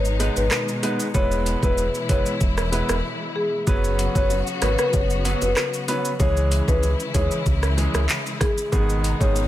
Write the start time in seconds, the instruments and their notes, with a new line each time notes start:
Already playing: sub bass G#1, string section B2 D#3 G#3 D#4
0.05 shaker
0.20 grand piano G#3 B3 D#4 B4, closed hi-hat, shaker
0.36 sub bass G#1, marimba B4, shaker
0.51 cross-stick, clap, shaker
0.68 shaker
0.83 grand piano G#3 B3 D#4 B4, closed hi-hat, shaker
1.00 shaker
1.14 sub bass E1, string section E3 E4, grand piano G#3 B3 E4 B4, marimba C#5, kick, shaker
1.31 shaker
1.46 closed hi-hat, shaker
1.63 sub bass E1, grand piano G#3 B3 E4 B4, marimba B4, kick, shaker
1.78 shaker
1.95 shaker
2.09 sub bass F#1, grand piano G#3 B3 E4 B4, marimba C#5, kick, closed hi-hat, shaker
2.26 shaker
2.41 sub bass E1, kick, shaker
2.58 cross-stick, shaker
2.72 grand piano G#3 B3 E4 B4, closed hi-hat, shaker
2.89 sub bass E1, cross-stick, shaker
3.36 marimba G#4
3.67 sub bass F#1, string section C#3 F#3 B3 F#4, grand piano F#3 B3 C#4 B4, kick, high bongo, shaker
3.84 shaker
3.99 closed hi-hat, shaker
4.15 sub bass F#1, grand piano F#3 B3 C#4 B4, marimba C#5, kick, high bongo, shaker
4.30 high bongo, shaker
4.47 shaker
4.62 sub bass G#1, grand piano F#3 B3 C#4 B4, marimba B4, cross-stick, closed hi-hat, low bongo, shaker
4.79 marimba B4, cross-stick, shaker
4.93 sub bass F#1, marimba C#5, kick, high bongo, shaker
5.10 shaker
5.25 grand piano F#3 B3 C#4 B4, closed hi-hat, high bongo, shaker
5.42 sub bass F#1, marimba B4, high bongo, shaker
5.57 cross-stick, clap, shaker
5.74 shaker
5.88 grand piano F#3 B3 C#4 B4, closed hi-hat, low bongo, shaker
6.05 shaker
6.20 sub bass C#2, string section C#3 E3 G#3 E4, grand piano E3 G#3 C#4 G#4, marimba C#5, kick, high bongo, shaker
6.37 shaker
6.52 closed hi-hat, shaker
6.68 sub bass C#2, grand piano E3 G#3 C#4 G#4, marimba B4, kick, high bongo, shaker
6.83 high bongo, shaker
7.00 shaker
7.14 sub bass D#2, grand piano E3 G#3 C#4 G#4, marimba C#5, kick, closed hi-hat, low bongo, shaker
7.31 shaker
7.46 sub bass C#2, kick, high bongo, shaker
7.63 cross-stick, shaker
7.77 grand piano E3 G#3 C#4 G#4, closed hi-hat, high bongo, shaker
7.94 sub bass C#2, cross-stick, high bongo, shaker
8.09 clap, shaker
8.26 shaker
8.41 marimba G#4, kick, cross-stick, closed hi-hat, low bongo, shaker
8.58 shaker
8.72 sub bass G#1, string section B2 D#3 D#4, grand piano D#3 G#3 B3 G#4, kick, high bongo, shaker
8.90 shaker
9.04 closed hi-hat, shaker
9.20 sub bass G#1, grand piano D#3 G#3 B3 G#4, marimba C#5, kick, high bongo, shaker
9.36 high bongo, shaker